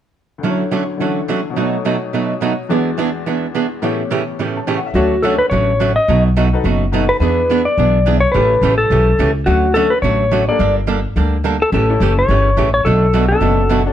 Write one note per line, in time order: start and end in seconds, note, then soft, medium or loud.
0.38 1.54 D2 soft
0.38 0.96 D3 soft
0.43 0.62 D3 medium
0.43 1.52 F#3 soft
0.43 0.63 F#3 medium
0.43 0.63 A3 medium
0.43 0.63 C#4 medium
0.43 1.58 E4 soft
0.43 0.63 F#4 medium
0.49 1.59 C#5 soft
0.72 0.82 D3 medium
0.72 0.82 F#3 medium
0.72 0.83 A3 medium
0.72 0.83 C#4 medium
0.72 0.83 F#4 medium
0.97 1.55 D3 soft
0.97 1.19 D3 medium
0.97 1.56 E3 soft
0.97 1.19 F#3 medium
0.97 1.20 A3 medium
0.97 1.56 D4 soft
0.97 1.57 A4 soft
1.01 1.20 C#4 medium
1.01 1.20 F#4 medium
1.28 1.39 D3 medium
1.28 1.39 F#3 medium
1.28 1.39 A3 medium
1.28 1.40 C#4 medium
1.28 1.40 F#4 medium
1.50 2.66 B2 medium
1.50 2.68 F#3 soft
1.56 1.76 B2 medium
1.56 1.76 F#3 medium
1.56 2.69 A3 soft
1.56 1.76 A3 medium
1.56 1.76 D#4 medium
1.56 2.71 D#4 soft
1.56 1.76 F#4 medium
1.61 2.72 C#5 medium
1.85 1.95 B2 medium
1.85 1.96 F#3 medium
1.85 1.96 A3 medium
1.85 1.96 D#4 medium
1.85 1.96 F#4 medium
2.13 2.32 B2 medium
2.13 2.33 F#3 medium
2.13 2.33 A3 medium
2.13 2.33 D#4 medium
2.13 2.33 F#4 medium
2.41 2.52 B2 medium
2.41 2.52 F#3 medium
2.41 2.52 A3 medium
2.41 2.52 D#4 medium
2.41 2.52 F#4 medium
2.69 3.82 E2 medium
2.69 3.81 E3 soft
2.69 2.89 E3 medium
2.69 3.83 G#3 soft
2.69 2.89 B3 medium
2.69 2.89 D4 medium
2.69 3.83 F#4 soft
2.69 2.90 G#4 medium
2.69 3.83 D5 medium
2.98 3.08 E3 medium
2.98 3.09 B3 medium
2.98 3.09 D4 medium
2.98 3.09 G#4 medium
3.26 3.45 E3 medium
3.26 3.46 B3 medium
3.26 3.46 D4 medium
3.26 3.46 G#4 medium
3.55 3.65 E3 medium
3.55 3.65 B3 medium
3.55 3.65 D4 medium
3.55 3.66 G#4 medium
3.82 4.95 A2 soft
3.82 4.01 A2 medium
3.82 4.02 C#3 medium
3.82 4.96 E3 soft
3.82 4.02 E3 medium
3.82 4.02 A3 medium
3.82 4.96 B3 soft
3.82 4.02 C#4 medium
3.82 4.96 G4 soft
3.82 4.02 G4 medium
3.82 4.95 C#5 medium
4.11 4.21 A2 medium
4.11 4.22 C#3 medium
4.11 4.22 E3 medium
4.11 4.22 A3 medium
4.11 4.22 C#4 medium
4.11 4.22 G4 medium
4.39 4.58 A2 medium
4.39 4.58 C#3 medium
4.39 4.58 E3 medium
4.39 4.59 A3 soft
4.39 4.59 C#4 medium
4.39 4.59 G4 medium
4.57 4.71 A5 soft
4.67 4.78 A2 medium
4.67 4.78 C#3 medium
4.67 4.78 E3 medium
4.67 4.78 A3 medium
4.67 4.78 C#4 medium
4.67 4.79 G4 medium
4.67 4.83 G5 soft
4.77 4.91 F#5 soft
4.86 5.00 E5 soft
4.94 5.40 D2 medium
4.94 5.14 D3 soft
4.94 5.14 F#3 medium
4.94 5.15 A3 medium
4.94 5.15 C#4 medium
4.94 5.10 D4 medium
4.94 5.11 F#4 medium
4.94 5.25 F#4 medium
4.94 5.15 F#4 medium
4.94 5.11 A4 medium
4.94 5.11 C#5 medium
5.23 5.34 D3 medium
5.23 5.34 F#3 medium
5.23 5.35 A3 medium
5.23 5.35 C#4 medium
5.23 5.39 D4 medium
5.23 5.39 F#4 medium
5.23 5.35 F#4 medium
5.23 5.38 A4 medium
5.23 5.39 A4 medium
5.23 5.39 C#5 medium
5.38 5.49 B4 medium
5.50 5.97 A1 medium
5.50 5.71 D3 medium
5.50 5.71 F#3 medium
5.50 5.71 A3 medium
5.50 5.72 C#4 medium
5.50 5.72 F#4 medium
5.50 5.95 C#5 medium
5.80 5.91 D3 medium
5.80 5.91 F#3 medium
5.80 5.91 A3 medium
5.80 5.92 C#4 medium
5.80 5.91 F#4 medium
5.96 6.23 D#5 loud
6.08 6.54 B1 medium
6.08 6.28 B2 medium
6.08 6.28 F#3 medium
6.08 6.28 A3 medium
6.08 6.28 D#4 medium
6.08 6.29 F#4 medium
6.37 6.47 B2 medium
6.37 6.48 F#3 medium
6.37 6.48 A3 medium
6.37 6.48 D#4 medium
6.37 6.48 F#4 medium
6.53 6.64 D#4 medium
6.53 6.64 F#4 medium
6.53 6.64 A4 medium
6.53 6.64 B4 medium
6.64 7.09 F#1 medium
6.64 6.84 B2 medium
6.64 6.84 F#3 medium
6.64 6.84 A3 medium
6.64 6.84 D#4 medium
6.64 6.85 F#4 medium
6.92 7.04 B2 medium
6.92 7.04 F#3 medium
6.92 7.04 A3 medium
6.92 7.21 D#4 medium
6.92 7.04 D#4 medium
6.92 7.21 F#4 soft
6.92 7.04 F#4 medium
6.92 7.21 A4 soft
6.92 7.21 B4 medium
7.09 7.19 B4 medium
7.20 7.66 E2 medium
7.20 7.41 E3 medium
7.20 7.41 B3 medium
7.20 7.63 D4 medium
7.20 7.41 D4 medium
7.20 7.63 E4 medium
7.20 7.63 G#4 medium
7.20 7.41 G#4 medium
7.20 7.67 B4 medium
7.20 7.64 B4 medium
7.50 7.60 E3 medium
7.50 7.61 B3 medium
7.50 7.61 D4 medium
7.50 7.61 G#4 medium
7.65 8.20 D5 medium
7.78 8.23 B1 medium
7.78 7.97 E3 medium
7.78 7.98 B3 medium
7.78 7.98 D4 medium
7.78 7.98 G#4 medium
8.06 8.17 E3 medium
8.06 8.17 B3 medium
8.06 8.17 D4 medium
8.06 8.18 G#4 medium
8.20 8.34 C#5 medium
8.32 8.57 A1 medium
8.32 8.53 C#3 medium
8.32 8.54 E3 medium
8.32 8.54 A3 medium
8.32 9.12 C#4 medium
8.32 8.54 C#4 medium
8.32 9.13 E4 medium
8.32 9.13 G4 medium
8.32 9.13 A4 medium
8.32 8.77 B4 medium
8.36 8.54 G4 medium
8.61 8.86 A1 medium
8.61 8.73 C#3 medium
8.61 8.73 E3 medium
8.61 8.74 A3 medium
8.61 8.74 C#4 medium
8.61 8.74 G4 medium
8.78 9.31 A4 medium
8.90 9.14 B1 medium
8.90 9.10 C#3 medium
8.90 9.10 E3 soft
8.90 9.11 A3 medium
8.90 9.11 C#4 medium
8.90 9.11 G4 medium
9.18 9.43 C#2 medium
9.18 9.30 C#3 medium
9.18 9.30 E3 medium
9.18 9.30 A3 medium
9.18 9.30 C#4 medium
9.18 9.31 G4 medium
9.46 9.92 D2 medium
9.46 9.66 D3 medium
9.46 9.66 F#3 medium
9.46 9.66 A3 medium
9.46 9.66 C#4 medium
9.46 9.76 F#4 medium
9.46 9.67 F#4 medium
9.74 9.86 D3 medium
9.74 9.86 F#3 medium
9.74 9.86 A3 medium
9.74 9.91 C#4 medium
9.74 9.87 C#4 medium
9.74 9.91 D4 medium
9.74 9.87 F#4 medium
9.74 9.91 F#4 medium
9.74 9.92 A4 medium
9.74 9.91 A4 medium
9.90 10.02 B4 medium
10.02 10.48 A1 medium
10.02 10.23 D3 medium
10.02 10.23 F#3 medium
10.02 10.23 A3 medium
10.02 10.23 C#4 medium
10.02 10.23 F#4 medium
10.02 10.48 C#5 medium
10.31 10.42 D3 medium
10.31 10.43 F#3 medium
10.31 10.43 A3 medium
10.31 10.43 C#4 medium
10.31 10.43 F#4 medium
10.48 10.59 A#3 medium
10.48 10.59 D4 medium
10.48 10.59 G4 medium
10.48 10.59 A4 medium
10.48 10.75 D5 medium
10.59 11.05 G1 medium
10.59 10.79 D3 medium
10.59 10.79 G3 medium
10.59 10.79 A#3 medium
10.59 10.80 D4 medium
10.59 10.80 A4 medium
10.87 10.99 D3 medium
10.87 10.99 G3 medium
10.87 10.99 A#3 medium
10.87 10.99 D4 medium
10.87 10.99 A4 medium
11.16 11.61 D2 medium
11.16 11.36 D3 medium
11.16 11.36 G3 soft
11.16 11.36 A#3 medium
11.16 11.36 D4 medium
11.16 11.36 A4 medium
11.44 11.55 D3 medium
11.44 11.55 G3 medium
11.44 11.56 A#3 medium
11.44 11.56 D4 medium
11.44 11.56 A4 medium
11.62 11.73 A4 medium
11.72 11.95 A1 medium
11.72 11.92 C#3 medium
11.72 11.93 E3 medium
11.72 11.93 A3 medium
11.72 11.93 C#4 medium
11.72 11.93 G4 medium
11.72 12.20 A4 medium
11.90 12.27 C#4 medium
11.90 12.27 E4 medium
11.90 12.27 G4 medium
11.90 12.27 A4 medium
12.00 12.25 F#1 medium
12.00 12.12 C#3 medium
12.00 12.12 E3 medium
12.00 12.12 A3 medium
12.00 12.12 C#4 medium
12.00 12.13 G4 medium
12.19 12.73 C#5 medium
12.28 12.53 G1 medium
12.28 12.49 C#3 medium
12.28 12.49 E3 medium
12.28 12.49 A3 medium
12.28 12.49 C#4 medium
12.28 12.49 G4 medium
12.57 12.81 A1 medium
12.57 12.68 C#3 medium
12.57 12.68 E3 medium
12.57 12.68 A3 medium
12.57 12.69 C#4 medium
12.57 12.69 G4 medium
12.74 12.86 C#5 medium
12.85 13.31 B1 medium
12.85 13.05 B2 medium
12.85 13.05 F#3 medium
12.85 13.05 A3 medium
12.85 13.05 D4 medium
12.85 13.06 F#4 medium
12.85 13.27 A4 medium
13.13 13.25 B2 medium
13.13 13.25 F#3 medium
13.13 13.25 A3 medium
13.13 13.25 D4 medium
13.13 13.25 F#4 medium
13.29 13.68 B3 medium
13.29 13.68 D4 medium
13.29 13.69 F#4 medium
13.29 13.82 A4 medium
13.29 13.69 A4 medium
13.41 13.87 F#1 medium
13.41 13.61 B2 medium
13.41 13.61 F#3 medium
13.41 13.61 A3 medium
13.41 13.61 D4 medium
13.41 13.61 F#4 medium
13.70 13.81 B2 medium
13.70 13.81 F#3 medium
13.70 13.81 A3 medium
13.70 13.81 D4 medium
13.70 13.82 F#4 medium
13.86 13.93 C#4 medium
13.86 13.93 D4 medium
13.86 13.93 F#4 medium
13.86 13.93 A4 medium